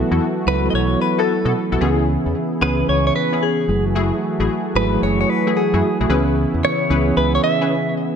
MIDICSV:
0, 0, Header, 1, 6, 480
1, 0, Start_track
1, 0, Key_signature, 4, "minor"
1, 0, Tempo, 535714
1, 1622, Time_signature, 4, 2, 24, 8
1, 7310, End_track
2, 0, Start_track
2, 0, Title_t, "Clean electric guitar"
2, 0, Program_c, 0, 27
2, 429, Note_on_c, 0, 71, 89
2, 627, Note_off_c, 0, 71, 0
2, 631, Note_on_c, 0, 75, 80
2, 667, Note_off_c, 0, 75, 0
2, 673, Note_on_c, 0, 73, 107
2, 906, Note_off_c, 0, 73, 0
2, 910, Note_on_c, 0, 71, 90
2, 1069, Note_off_c, 0, 71, 0
2, 1072, Note_on_c, 0, 69, 88
2, 1366, Note_off_c, 0, 69, 0
2, 2351, Note_on_c, 0, 71, 98
2, 2570, Note_off_c, 0, 71, 0
2, 2591, Note_on_c, 0, 73, 102
2, 2739, Note_off_c, 0, 73, 0
2, 2750, Note_on_c, 0, 73, 97
2, 2824, Note_off_c, 0, 73, 0
2, 2828, Note_on_c, 0, 71, 101
2, 3070, Note_on_c, 0, 68, 76
2, 3072, Note_off_c, 0, 71, 0
2, 3437, Note_off_c, 0, 68, 0
2, 4269, Note_on_c, 0, 71, 95
2, 4506, Note_off_c, 0, 71, 0
2, 4509, Note_on_c, 0, 73, 106
2, 4654, Note_off_c, 0, 73, 0
2, 4665, Note_on_c, 0, 73, 94
2, 4745, Note_off_c, 0, 73, 0
2, 4745, Note_on_c, 0, 71, 86
2, 4988, Note_on_c, 0, 68, 78
2, 4991, Note_off_c, 0, 71, 0
2, 5356, Note_off_c, 0, 68, 0
2, 5955, Note_on_c, 0, 73, 90
2, 6422, Note_off_c, 0, 73, 0
2, 6426, Note_on_c, 0, 71, 97
2, 6572, Note_off_c, 0, 71, 0
2, 6585, Note_on_c, 0, 73, 97
2, 6660, Note_off_c, 0, 73, 0
2, 6663, Note_on_c, 0, 76, 108
2, 7109, Note_off_c, 0, 76, 0
2, 7310, End_track
3, 0, Start_track
3, 0, Title_t, "Analog polysynth"
3, 0, Program_c, 1, 90
3, 100, Note_on_c, 1, 59, 77
3, 102, Note_on_c, 1, 64, 78
3, 104, Note_on_c, 1, 66, 72
3, 105, Note_on_c, 1, 69, 84
3, 225, Note_off_c, 1, 59, 0
3, 226, Note_off_c, 1, 64, 0
3, 227, Note_off_c, 1, 66, 0
3, 228, Note_off_c, 1, 69, 0
3, 1059, Note_on_c, 1, 59, 80
3, 1061, Note_on_c, 1, 64, 74
3, 1063, Note_on_c, 1, 66, 73
3, 1065, Note_on_c, 1, 69, 86
3, 1185, Note_off_c, 1, 59, 0
3, 1186, Note_off_c, 1, 64, 0
3, 1187, Note_off_c, 1, 66, 0
3, 1188, Note_off_c, 1, 69, 0
3, 1299, Note_on_c, 1, 59, 83
3, 1301, Note_on_c, 1, 64, 70
3, 1303, Note_on_c, 1, 66, 71
3, 1305, Note_on_c, 1, 69, 93
3, 1425, Note_off_c, 1, 59, 0
3, 1426, Note_off_c, 1, 64, 0
3, 1427, Note_off_c, 1, 66, 0
3, 1428, Note_off_c, 1, 69, 0
3, 1540, Note_on_c, 1, 59, 77
3, 1541, Note_on_c, 1, 64, 76
3, 1544, Note_on_c, 1, 66, 77
3, 1544, Note_on_c, 1, 69, 89
3, 1608, Note_off_c, 1, 59, 0
3, 1611, Note_off_c, 1, 64, 0
3, 1619, Note_on_c, 1, 59, 85
3, 1622, Note_on_c, 1, 61, 86
3, 1622, Note_on_c, 1, 64, 76
3, 1625, Note_on_c, 1, 68, 98
3, 1667, Note_off_c, 1, 66, 0
3, 1667, Note_off_c, 1, 69, 0
3, 1847, Note_off_c, 1, 59, 0
3, 1849, Note_off_c, 1, 61, 0
3, 1849, Note_off_c, 1, 64, 0
3, 1851, Note_off_c, 1, 68, 0
3, 2340, Note_on_c, 1, 59, 81
3, 2341, Note_on_c, 1, 61, 77
3, 2344, Note_on_c, 1, 64, 77
3, 2346, Note_on_c, 1, 68, 94
3, 2522, Note_off_c, 1, 59, 0
3, 2523, Note_off_c, 1, 61, 0
3, 2524, Note_off_c, 1, 64, 0
3, 2525, Note_off_c, 1, 68, 0
3, 2980, Note_on_c, 1, 59, 82
3, 2982, Note_on_c, 1, 61, 72
3, 2984, Note_on_c, 1, 64, 77
3, 2986, Note_on_c, 1, 68, 86
3, 3105, Note_off_c, 1, 59, 0
3, 3106, Note_off_c, 1, 61, 0
3, 3107, Note_off_c, 1, 64, 0
3, 3108, Note_off_c, 1, 68, 0
3, 3542, Note_on_c, 1, 57, 88
3, 3543, Note_on_c, 1, 64, 85
3, 3545, Note_on_c, 1, 66, 85
3, 3547, Note_on_c, 1, 68, 99
3, 3723, Note_off_c, 1, 57, 0
3, 3724, Note_off_c, 1, 64, 0
3, 3725, Note_off_c, 1, 66, 0
3, 3726, Note_off_c, 1, 68, 0
3, 3940, Note_on_c, 1, 57, 86
3, 3942, Note_on_c, 1, 64, 70
3, 3943, Note_on_c, 1, 66, 73
3, 3946, Note_on_c, 1, 68, 85
3, 4065, Note_off_c, 1, 57, 0
3, 4066, Note_off_c, 1, 64, 0
3, 4067, Note_off_c, 1, 66, 0
3, 4068, Note_off_c, 1, 68, 0
3, 4900, Note_on_c, 1, 57, 79
3, 4900, Note_on_c, 1, 64, 76
3, 4902, Note_on_c, 1, 66, 71
3, 4904, Note_on_c, 1, 68, 97
3, 5025, Note_off_c, 1, 57, 0
3, 5025, Note_off_c, 1, 64, 0
3, 5026, Note_off_c, 1, 66, 0
3, 5027, Note_off_c, 1, 68, 0
3, 5139, Note_on_c, 1, 57, 80
3, 5140, Note_on_c, 1, 64, 75
3, 5142, Note_on_c, 1, 66, 78
3, 5145, Note_on_c, 1, 68, 89
3, 5265, Note_off_c, 1, 57, 0
3, 5265, Note_off_c, 1, 64, 0
3, 5266, Note_off_c, 1, 66, 0
3, 5268, Note_off_c, 1, 68, 0
3, 5380, Note_on_c, 1, 57, 79
3, 5381, Note_on_c, 1, 64, 77
3, 5383, Note_on_c, 1, 66, 72
3, 5385, Note_on_c, 1, 68, 91
3, 5452, Note_off_c, 1, 64, 0
3, 5453, Note_off_c, 1, 68, 0
3, 5461, Note_on_c, 1, 61, 96
3, 5463, Note_on_c, 1, 64, 85
3, 5464, Note_on_c, 1, 68, 80
3, 5467, Note_on_c, 1, 71, 100
3, 5505, Note_off_c, 1, 57, 0
3, 5507, Note_off_c, 1, 66, 0
3, 5688, Note_off_c, 1, 61, 0
3, 5689, Note_off_c, 1, 64, 0
3, 5690, Note_off_c, 1, 68, 0
3, 5691, Note_off_c, 1, 71, 0
3, 6183, Note_on_c, 1, 61, 81
3, 6184, Note_on_c, 1, 64, 79
3, 6185, Note_on_c, 1, 68, 81
3, 6187, Note_on_c, 1, 71, 88
3, 6363, Note_off_c, 1, 61, 0
3, 6364, Note_off_c, 1, 64, 0
3, 6365, Note_off_c, 1, 68, 0
3, 6366, Note_off_c, 1, 71, 0
3, 6821, Note_on_c, 1, 61, 88
3, 6823, Note_on_c, 1, 64, 74
3, 6824, Note_on_c, 1, 68, 69
3, 6826, Note_on_c, 1, 71, 86
3, 6946, Note_off_c, 1, 61, 0
3, 6947, Note_off_c, 1, 64, 0
3, 6947, Note_off_c, 1, 68, 0
3, 6948, Note_off_c, 1, 71, 0
3, 7310, End_track
4, 0, Start_track
4, 0, Title_t, "Tine electric piano"
4, 0, Program_c, 2, 4
4, 0, Control_c, 2, 64, 127
4, 0, Note_on_c, 2, 54, 89
4, 0, Note_on_c, 2, 59, 84
4, 0, Note_on_c, 2, 64, 82
4, 0, Note_on_c, 2, 69, 98
4, 396, Note_off_c, 2, 54, 0
4, 398, Note_off_c, 2, 59, 0
4, 402, Note_off_c, 2, 69, 0
4, 414, Note_off_c, 2, 64, 0
4, 417, Note_on_c, 2, 54, 75
4, 422, Note_on_c, 2, 59, 71
4, 424, Note_on_c, 2, 64, 71
4, 428, Note_on_c, 2, 69, 79
4, 565, Note_off_c, 2, 54, 0
4, 569, Note_off_c, 2, 59, 0
4, 574, Note_off_c, 2, 64, 0
4, 576, Note_off_c, 2, 69, 0
4, 576, Note_on_c, 2, 54, 73
4, 580, Note_on_c, 2, 59, 68
4, 584, Note_on_c, 2, 64, 72
4, 588, Note_on_c, 2, 69, 85
4, 1474, Note_off_c, 2, 54, 0
4, 1477, Note_off_c, 2, 59, 0
4, 1478, Note_off_c, 2, 64, 0
4, 1480, Note_off_c, 2, 69, 0
4, 1618, Note_on_c, 2, 52, 96
4, 1621, Note_on_c, 2, 59, 81
4, 1624, Note_on_c, 2, 61, 83
4, 1630, Note_on_c, 2, 68, 102
4, 1632, Control_c, 2, 64, 0
4, 1786, Control_c, 2, 64, 127
4, 2315, Note_off_c, 2, 52, 0
4, 2317, Note_off_c, 2, 59, 0
4, 2319, Note_off_c, 2, 61, 0
4, 2321, Note_off_c, 2, 68, 0
4, 2338, Note_on_c, 2, 52, 74
4, 2343, Note_on_c, 2, 59, 68
4, 2346, Note_on_c, 2, 61, 65
4, 2349, Note_on_c, 2, 68, 83
4, 2487, Note_off_c, 2, 52, 0
4, 2490, Note_off_c, 2, 59, 0
4, 2495, Note_off_c, 2, 61, 0
4, 2497, Note_off_c, 2, 68, 0
4, 2498, Note_on_c, 2, 52, 73
4, 2501, Note_on_c, 2, 59, 67
4, 2505, Note_on_c, 2, 61, 70
4, 2510, Note_on_c, 2, 68, 82
4, 3297, Note_off_c, 2, 68, 0
4, 3298, Note_on_c, 2, 54, 76
4, 3301, Note_off_c, 2, 52, 0
4, 3301, Note_on_c, 2, 57, 65
4, 3302, Note_off_c, 2, 59, 0
4, 3304, Note_off_c, 2, 61, 0
4, 3305, Note_on_c, 2, 64, 72
4, 3308, Note_on_c, 2, 68, 86
4, 3313, Control_c, 2, 64, 0
4, 3485, Control_c, 2, 64, 127
4, 4227, Note_off_c, 2, 54, 0
4, 4229, Note_off_c, 2, 57, 0
4, 4231, Note_off_c, 2, 64, 0
4, 4232, Note_off_c, 2, 68, 0
4, 4256, Note_on_c, 2, 54, 76
4, 4262, Note_on_c, 2, 57, 73
4, 4265, Note_on_c, 2, 64, 70
4, 4269, Note_on_c, 2, 68, 88
4, 4403, Note_off_c, 2, 54, 0
4, 4407, Note_off_c, 2, 57, 0
4, 4410, Note_off_c, 2, 64, 0
4, 4414, Note_on_c, 2, 54, 76
4, 4416, Note_off_c, 2, 68, 0
4, 4418, Note_on_c, 2, 57, 71
4, 4421, Note_on_c, 2, 64, 76
4, 4426, Note_on_c, 2, 68, 86
4, 5313, Note_off_c, 2, 54, 0
4, 5316, Note_off_c, 2, 57, 0
4, 5317, Note_off_c, 2, 64, 0
4, 5319, Note_off_c, 2, 68, 0
4, 5453, Note_on_c, 2, 52, 93
4, 5458, Note_on_c, 2, 59, 85
4, 5461, Note_on_c, 2, 61, 82
4, 5463, Note_on_c, 2, 68, 100
4, 5472, Control_c, 2, 64, 0
4, 5624, Control_c, 2, 64, 127
4, 6153, Note_off_c, 2, 52, 0
4, 6156, Note_off_c, 2, 59, 0
4, 6157, Note_off_c, 2, 61, 0
4, 6158, Note_off_c, 2, 68, 0
4, 6178, Note_on_c, 2, 52, 75
4, 6182, Note_on_c, 2, 59, 71
4, 6185, Note_on_c, 2, 61, 70
4, 6189, Note_on_c, 2, 68, 81
4, 6328, Note_off_c, 2, 52, 0
4, 6333, Note_off_c, 2, 59, 0
4, 6334, Note_off_c, 2, 61, 0
4, 6336, Note_off_c, 2, 68, 0
4, 6339, Note_on_c, 2, 52, 76
4, 6343, Note_on_c, 2, 59, 69
4, 6346, Note_on_c, 2, 61, 72
4, 6350, Note_on_c, 2, 68, 90
4, 7236, Note_off_c, 2, 52, 0
4, 7238, Note_off_c, 2, 59, 0
4, 7240, Note_off_c, 2, 61, 0
4, 7242, Note_off_c, 2, 68, 0
4, 7310, End_track
5, 0, Start_track
5, 0, Title_t, "Analog synth pad"
5, 0, Program_c, 3, 89
5, 0, Note_on_c, 3, 52, 79
5, 0, Note_on_c, 3, 57, 78
5, 0, Note_on_c, 3, 59, 79
5, 0, Note_on_c, 3, 66, 100
5, 1587, Note_off_c, 3, 59, 0
5, 1603, Note_off_c, 3, 57, 0
5, 1605, Note_off_c, 3, 52, 0
5, 1605, Note_off_c, 3, 66, 0
5, 1625, Note_on_c, 3, 59, 78
5, 1626, Note_on_c, 3, 49, 82
5, 1626, Note_on_c, 3, 64, 89
5, 1627, Note_on_c, 3, 68, 80
5, 3287, Note_off_c, 3, 49, 0
5, 3287, Note_off_c, 3, 59, 0
5, 3287, Note_off_c, 3, 64, 0
5, 3302, Note_on_c, 3, 57, 83
5, 3304, Note_on_c, 3, 52, 86
5, 3304, Note_on_c, 3, 66, 91
5, 5440, Note_off_c, 3, 57, 0
5, 5441, Note_off_c, 3, 52, 0
5, 5441, Note_off_c, 3, 66, 0
5, 5459, Note_on_c, 3, 64, 97
5, 5461, Note_on_c, 3, 49, 86
5, 5461, Note_on_c, 3, 59, 84
5, 7310, Note_off_c, 3, 49, 0
5, 7310, Note_off_c, 3, 59, 0
5, 7310, Note_off_c, 3, 64, 0
5, 7310, Note_off_c, 3, 68, 0
5, 7310, End_track
6, 0, Start_track
6, 0, Title_t, "Fingered electric bass"
6, 0, Program_c, 4, 33
6, 101, Note_on_c, 4, 40, 89
6, 165, Note_off_c, 4, 40, 0
6, 420, Note_on_c, 4, 37, 93
6, 609, Note_off_c, 4, 37, 0
6, 659, Note_on_c, 4, 35, 98
6, 848, Note_off_c, 4, 35, 0
6, 1302, Note_on_c, 4, 47, 104
6, 1365, Note_off_c, 4, 47, 0
6, 1544, Note_on_c, 4, 35, 86
6, 1606, Note_off_c, 4, 35, 0
6, 1624, Note_on_c, 4, 37, 105
6, 1936, Note_off_c, 4, 37, 0
6, 2026, Note_on_c, 4, 40, 86
6, 2088, Note_off_c, 4, 40, 0
6, 2346, Note_on_c, 4, 37, 90
6, 2532, Note_off_c, 4, 37, 0
6, 2585, Note_on_c, 4, 37, 104
6, 2772, Note_off_c, 4, 37, 0
6, 3303, Note_on_c, 4, 30, 94
6, 3678, Note_off_c, 4, 30, 0
6, 3942, Note_on_c, 4, 33, 96
6, 4005, Note_off_c, 4, 33, 0
6, 4259, Note_on_c, 4, 32, 95
6, 4448, Note_off_c, 4, 32, 0
6, 4501, Note_on_c, 4, 30, 88
6, 4689, Note_off_c, 4, 30, 0
6, 5140, Note_on_c, 4, 42, 101
6, 5204, Note_off_c, 4, 42, 0
6, 5382, Note_on_c, 4, 35, 91
6, 5445, Note_off_c, 4, 35, 0
6, 5461, Note_on_c, 4, 37, 105
6, 5773, Note_off_c, 4, 37, 0
6, 5861, Note_on_c, 4, 40, 97
6, 5925, Note_off_c, 4, 40, 0
6, 6184, Note_on_c, 4, 37, 89
6, 6371, Note_off_c, 4, 37, 0
6, 6423, Note_on_c, 4, 37, 108
6, 6611, Note_off_c, 4, 37, 0
6, 7310, End_track
0, 0, End_of_file